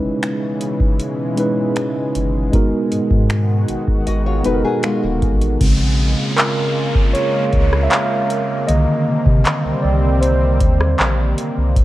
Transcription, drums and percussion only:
0, 0, Header, 1, 2, 480
1, 0, Start_track
1, 0, Tempo, 769231
1, 1580, Time_signature, 4, 2, 24, 8
1, 7393, End_track
2, 0, Start_track
2, 0, Title_t, "Drums"
2, 141, Note_on_c, 9, 42, 58
2, 142, Note_on_c, 9, 26, 105
2, 203, Note_off_c, 9, 42, 0
2, 204, Note_off_c, 9, 26, 0
2, 379, Note_on_c, 9, 42, 73
2, 442, Note_off_c, 9, 42, 0
2, 500, Note_on_c, 9, 36, 95
2, 562, Note_off_c, 9, 36, 0
2, 620, Note_on_c, 9, 42, 69
2, 683, Note_off_c, 9, 42, 0
2, 857, Note_on_c, 9, 42, 69
2, 920, Note_off_c, 9, 42, 0
2, 1097, Note_on_c, 9, 42, 61
2, 1102, Note_on_c, 9, 26, 104
2, 1159, Note_off_c, 9, 42, 0
2, 1164, Note_off_c, 9, 26, 0
2, 1341, Note_on_c, 9, 42, 68
2, 1404, Note_off_c, 9, 42, 0
2, 1580, Note_on_c, 9, 36, 117
2, 1580, Note_on_c, 9, 42, 72
2, 1642, Note_off_c, 9, 36, 0
2, 1642, Note_off_c, 9, 42, 0
2, 1820, Note_on_c, 9, 42, 61
2, 1882, Note_off_c, 9, 42, 0
2, 1939, Note_on_c, 9, 36, 97
2, 2002, Note_off_c, 9, 36, 0
2, 2058, Note_on_c, 9, 42, 62
2, 2059, Note_on_c, 9, 26, 106
2, 2120, Note_off_c, 9, 42, 0
2, 2121, Note_off_c, 9, 26, 0
2, 2298, Note_on_c, 9, 42, 68
2, 2361, Note_off_c, 9, 42, 0
2, 2419, Note_on_c, 9, 36, 98
2, 2481, Note_off_c, 9, 36, 0
2, 2538, Note_on_c, 9, 42, 70
2, 2601, Note_off_c, 9, 42, 0
2, 2774, Note_on_c, 9, 42, 68
2, 2837, Note_off_c, 9, 42, 0
2, 3015, Note_on_c, 9, 42, 58
2, 3020, Note_on_c, 9, 26, 109
2, 3077, Note_off_c, 9, 42, 0
2, 3082, Note_off_c, 9, 26, 0
2, 3258, Note_on_c, 9, 42, 41
2, 3259, Note_on_c, 9, 36, 90
2, 3321, Note_off_c, 9, 36, 0
2, 3321, Note_off_c, 9, 42, 0
2, 3379, Note_on_c, 9, 42, 67
2, 3441, Note_off_c, 9, 42, 0
2, 3499, Note_on_c, 9, 36, 118
2, 3499, Note_on_c, 9, 42, 76
2, 3499, Note_on_c, 9, 49, 95
2, 3561, Note_off_c, 9, 42, 0
2, 3561, Note_off_c, 9, 49, 0
2, 3562, Note_off_c, 9, 36, 0
2, 3980, Note_on_c, 9, 42, 67
2, 3981, Note_on_c, 9, 39, 114
2, 4042, Note_off_c, 9, 42, 0
2, 4043, Note_off_c, 9, 39, 0
2, 4339, Note_on_c, 9, 36, 105
2, 4401, Note_off_c, 9, 36, 0
2, 4460, Note_on_c, 9, 42, 77
2, 4523, Note_off_c, 9, 42, 0
2, 4696, Note_on_c, 9, 42, 69
2, 4699, Note_on_c, 9, 36, 89
2, 4758, Note_off_c, 9, 42, 0
2, 4761, Note_off_c, 9, 36, 0
2, 4823, Note_on_c, 9, 37, 94
2, 4885, Note_off_c, 9, 37, 0
2, 4936, Note_on_c, 9, 42, 59
2, 4941, Note_on_c, 9, 39, 114
2, 4998, Note_off_c, 9, 42, 0
2, 5003, Note_off_c, 9, 39, 0
2, 5181, Note_on_c, 9, 42, 69
2, 5243, Note_off_c, 9, 42, 0
2, 5419, Note_on_c, 9, 42, 83
2, 5482, Note_off_c, 9, 42, 0
2, 5779, Note_on_c, 9, 36, 102
2, 5841, Note_off_c, 9, 36, 0
2, 5900, Note_on_c, 9, 42, 65
2, 5901, Note_on_c, 9, 39, 110
2, 5962, Note_off_c, 9, 42, 0
2, 5963, Note_off_c, 9, 39, 0
2, 6381, Note_on_c, 9, 42, 76
2, 6443, Note_off_c, 9, 42, 0
2, 6617, Note_on_c, 9, 42, 71
2, 6620, Note_on_c, 9, 36, 90
2, 6680, Note_off_c, 9, 42, 0
2, 6682, Note_off_c, 9, 36, 0
2, 6744, Note_on_c, 9, 37, 94
2, 6806, Note_off_c, 9, 37, 0
2, 6856, Note_on_c, 9, 42, 63
2, 6861, Note_on_c, 9, 39, 118
2, 6919, Note_off_c, 9, 42, 0
2, 6924, Note_off_c, 9, 39, 0
2, 7101, Note_on_c, 9, 42, 71
2, 7163, Note_off_c, 9, 42, 0
2, 7340, Note_on_c, 9, 36, 123
2, 7341, Note_on_c, 9, 42, 80
2, 7393, Note_off_c, 9, 36, 0
2, 7393, Note_off_c, 9, 42, 0
2, 7393, End_track
0, 0, End_of_file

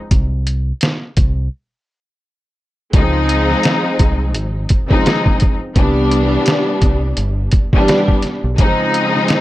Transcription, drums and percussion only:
0, 0, Header, 1, 2, 480
1, 0, Start_track
1, 0, Tempo, 705882
1, 78, Time_signature, 4, 2, 24, 8
1, 6397, End_track
2, 0, Start_track
2, 0, Title_t, "Drums"
2, 75, Note_on_c, 9, 42, 89
2, 77, Note_on_c, 9, 36, 111
2, 143, Note_off_c, 9, 42, 0
2, 145, Note_off_c, 9, 36, 0
2, 318, Note_on_c, 9, 42, 86
2, 386, Note_off_c, 9, 42, 0
2, 550, Note_on_c, 9, 42, 84
2, 564, Note_on_c, 9, 38, 109
2, 618, Note_off_c, 9, 42, 0
2, 632, Note_off_c, 9, 38, 0
2, 793, Note_on_c, 9, 42, 74
2, 797, Note_on_c, 9, 36, 89
2, 861, Note_off_c, 9, 42, 0
2, 865, Note_off_c, 9, 36, 0
2, 1995, Note_on_c, 9, 42, 91
2, 1997, Note_on_c, 9, 36, 111
2, 2063, Note_off_c, 9, 42, 0
2, 2065, Note_off_c, 9, 36, 0
2, 2238, Note_on_c, 9, 42, 87
2, 2306, Note_off_c, 9, 42, 0
2, 2389, Note_on_c, 9, 38, 37
2, 2457, Note_off_c, 9, 38, 0
2, 2471, Note_on_c, 9, 42, 85
2, 2485, Note_on_c, 9, 38, 107
2, 2539, Note_off_c, 9, 42, 0
2, 2553, Note_off_c, 9, 38, 0
2, 2716, Note_on_c, 9, 42, 76
2, 2718, Note_on_c, 9, 36, 91
2, 2784, Note_off_c, 9, 42, 0
2, 2786, Note_off_c, 9, 36, 0
2, 2955, Note_on_c, 9, 42, 83
2, 3023, Note_off_c, 9, 42, 0
2, 3190, Note_on_c, 9, 42, 75
2, 3199, Note_on_c, 9, 36, 94
2, 3258, Note_off_c, 9, 42, 0
2, 3267, Note_off_c, 9, 36, 0
2, 3336, Note_on_c, 9, 36, 94
2, 3404, Note_off_c, 9, 36, 0
2, 3441, Note_on_c, 9, 42, 93
2, 3447, Note_on_c, 9, 38, 117
2, 3509, Note_off_c, 9, 42, 0
2, 3515, Note_off_c, 9, 38, 0
2, 3577, Note_on_c, 9, 36, 91
2, 3645, Note_off_c, 9, 36, 0
2, 3671, Note_on_c, 9, 42, 67
2, 3687, Note_on_c, 9, 36, 93
2, 3739, Note_off_c, 9, 42, 0
2, 3755, Note_off_c, 9, 36, 0
2, 3915, Note_on_c, 9, 42, 88
2, 3917, Note_on_c, 9, 36, 113
2, 3983, Note_off_c, 9, 42, 0
2, 3985, Note_off_c, 9, 36, 0
2, 4158, Note_on_c, 9, 42, 87
2, 4226, Note_off_c, 9, 42, 0
2, 4391, Note_on_c, 9, 42, 85
2, 4405, Note_on_c, 9, 38, 108
2, 4459, Note_off_c, 9, 42, 0
2, 4473, Note_off_c, 9, 38, 0
2, 4635, Note_on_c, 9, 42, 75
2, 4638, Note_on_c, 9, 36, 89
2, 4703, Note_off_c, 9, 42, 0
2, 4706, Note_off_c, 9, 36, 0
2, 4874, Note_on_c, 9, 42, 82
2, 4942, Note_off_c, 9, 42, 0
2, 5110, Note_on_c, 9, 42, 75
2, 5119, Note_on_c, 9, 36, 95
2, 5178, Note_off_c, 9, 42, 0
2, 5187, Note_off_c, 9, 36, 0
2, 5256, Note_on_c, 9, 36, 96
2, 5324, Note_off_c, 9, 36, 0
2, 5360, Note_on_c, 9, 42, 91
2, 5367, Note_on_c, 9, 38, 119
2, 5428, Note_off_c, 9, 42, 0
2, 5435, Note_off_c, 9, 38, 0
2, 5497, Note_on_c, 9, 36, 92
2, 5565, Note_off_c, 9, 36, 0
2, 5593, Note_on_c, 9, 42, 70
2, 5607, Note_on_c, 9, 38, 36
2, 5661, Note_off_c, 9, 42, 0
2, 5675, Note_off_c, 9, 38, 0
2, 5836, Note_on_c, 9, 42, 89
2, 5837, Note_on_c, 9, 36, 117
2, 5904, Note_off_c, 9, 42, 0
2, 5905, Note_off_c, 9, 36, 0
2, 6080, Note_on_c, 9, 42, 90
2, 6148, Note_off_c, 9, 42, 0
2, 6230, Note_on_c, 9, 38, 38
2, 6298, Note_off_c, 9, 38, 0
2, 6313, Note_on_c, 9, 42, 84
2, 6326, Note_on_c, 9, 38, 108
2, 6381, Note_off_c, 9, 42, 0
2, 6394, Note_off_c, 9, 38, 0
2, 6397, End_track
0, 0, End_of_file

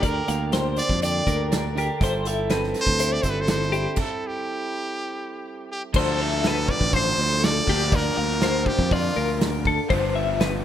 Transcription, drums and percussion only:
0, 0, Header, 1, 2, 480
1, 0, Start_track
1, 0, Tempo, 493827
1, 29, Time_signature, 4, 2, 24, 8
1, 10348, End_track
2, 0, Start_track
2, 0, Title_t, "Drums"
2, 26, Note_on_c, 9, 42, 95
2, 28, Note_on_c, 9, 36, 101
2, 124, Note_off_c, 9, 42, 0
2, 126, Note_off_c, 9, 36, 0
2, 272, Note_on_c, 9, 42, 66
2, 369, Note_off_c, 9, 42, 0
2, 508, Note_on_c, 9, 42, 81
2, 516, Note_on_c, 9, 38, 100
2, 605, Note_off_c, 9, 42, 0
2, 613, Note_off_c, 9, 38, 0
2, 743, Note_on_c, 9, 42, 76
2, 840, Note_off_c, 9, 42, 0
2, 868, Note_on_c, 9, 36, 90
2, 878, Note_on_c, 9, 38, 35
2, 966, Note_off_c, 9, 36, 0
2, 975, Note_off_c, 9, 38, 0
2, 993, Note_on_c, 9, 42, 96
2, 1090, Note_off_c, 9, 42, 0
2, 1232, Note_on_c, 9, 36, 75
2, 1239, Note_on_c, 9, 42, 66
2, 1329, Note_off_c, 9, 36, 0
2, 1336, Note_off_c, 9, 42, 0
2, 1476, Note_on_c, 9, 42, 102
2, 1484, Note_on_c, 9, 38, 120
2, 1573, Note_off_c, 9, 42, 0
2, 1581, Note_off_c, 9, 38, 0
2, 1724, Note_on_c, 9, 42, 74
2, 1821, Note_off_c, 9, 42, 0
2, 1953, Note_on_c, 9, 36, 106
2, 1964, Note_on_c, 9, 42, 93
2, 2051, Note_off_c, 9, 36, 0
2, 2061, Note_off_c, 9, 42, 0
2, 2190, Note_on_c, 9, 42, 81
2, 2287, Note_off_c, 9, 42, 0
2, 2427, Note_on_c, 9, 42, 84
2, 2435, Note_on_c, 9, 38, 105
2, 2525, Note_off_c, 9, 42, 0
2, 2532, Note_off_c, 9, 38, 0
2, 2562, Note_on_c, 9, 38, 30
2, 2659, Note_off_c, 9, 38, 0
2, 2666, Note_on_c, 9, 42, 71
2, 2674, Note_on_c, 9, 38, 35
2, 2764, Note_off_c, 9, 42, 0
2, 2771, Note_off_c, 9, 38, 0
2, 2786, Note_on_c, 9, 36, 85
2, 2883, Note_off_c, 9, 36, 0
2, 2903, Note_on_c, 9, 42, 102
2, 3000, Note_off_c, 9, 42, 0
2, 3141, Note_on_c, 9, 42, 63
2, 3144, Note_on_c, 9, 36, 74
2, 3238, Note_off_c, 9, 42, 0
2, 3242, Note_off_c, 9, 36, 0
2, 3377, Note_on_c, 9, 42, 93
2, 3385, Note_on_c, 9, 38, 119
2, 3475, Note_off_c, 9, 42, 0
2, 3482, Note_off_c, 9, 38, 0
2, 3514, Note_on_c, 9, 38, 29
2, 3612, Note_off_c, 9, 38, 0
2, 3625, Note_on_c, 9, 42, 59
2, 3722, Note_off_c, 9, 42, 0
2, 3850, Note_on_c, 9, 49, 97
2, 3859, Note_on_c, 9, 36, 97
2, 3947, Note_off_c, 9, 49, 0
2, 3957, Note_off_c, 9, 36, 0
2, 5772, Note_on_c, 9, 49, 116
2, 5775, Note_on_c, 9, 36, 117
2, 5869, Note_off_c, 9, 49, 0
2, 5872, Note_off_c, 9, 36, 0
2, 6254, Note_on_c, 9, 46, 65
2, 6262, Note_on_c, 9, 38, 106
2, 6352, Note_off_c, 9, 46, 0
2, 6359, Note_off_c, 9, 38, 0
2, 6497, Note_on_c, 9, 36, 94
2, 6594, Note_off_c, 9, 36, 0
2, 6618, Note_on_c, 9, 36, 81
2, 6715, Note_off_c, 9, 36, 0
2, 6736, Note_on_c, 9, 46, 63
2, 6737, Note_on_c, 9, 36, 110
2, 6833, Note_off_c, 9, 46, 0
2, 6834, Note_off_c, 9, 36, 0
2, 7223, Note_on_c, 9, 46, 64
2, 7231, Note_on_c, 9, 38, 123
2, 7321, Note_off_c, 9, 46, 0
2, 7328, Note_off_c, 9, 38, 0
2, 7460, Note_on_c, 9, 36, 76
2, 7557, Note_off_c, 9, 36, 0
2, 7700, Note_on_c, 9, 36, 116
2, 7703, Note_on_c, 9, 46, 68
2, 7797, Note_off_c, 9, 36, 0
2, 7800, Note_off_c, 9, 46, 0
2, 8174, Note_on_c, 9, 46, 59
2, 8181, Note_on_c, 9, 38, 104
2, 8271, Note_off_c, 9, 46, 0
2, 8279, Note_off_c, 9, 38, 0
2, 8418, Note_on_c, 9, 36, 94
2, 8516, Note_off_c, 9, 36, 0
2, 8541, Note_on_c, 9, 36, 85
2, 8638, Note_off_c, 9, 36, 0
2, 8664, Note_on_c, 9, 36, 105
2, 8666, Note_on_c, 9, 46, 74
2, 8761, Note_off_c, 9, 36, 0
2, 8763, Note_off_c, 9, 46, 0
2, 9144, Note_on_c, 9, 46, 69
2, 9152, Note_on_c, 9, 38, 115
2, 9241, Note_off_c, 9, 46, 0
2, 9249, Note_off_c, 9, 38, 0
2, 9383, Note_on_c, 9, 36, 81
2, 9481, Note_off_c, 9, 36, 0
2, 9625, Note_on_c, 9, 36, 117
2, 9636, Note_on_c, 9, 46, 65
2, 9723, Note_off_c, 9, 36, 0
2, 9733, Note_off_c, 9, 46, 0
2, 10109, Note_on_c, 9, 46, 66
2, 10117, Note_on_c, 9, 38, 117
2, 10206, Note_off_c, 9, 46, 0
2, 10214, Note_off_c, 9, 38, 0
2, 10348, End_track
0, 0, End_of_file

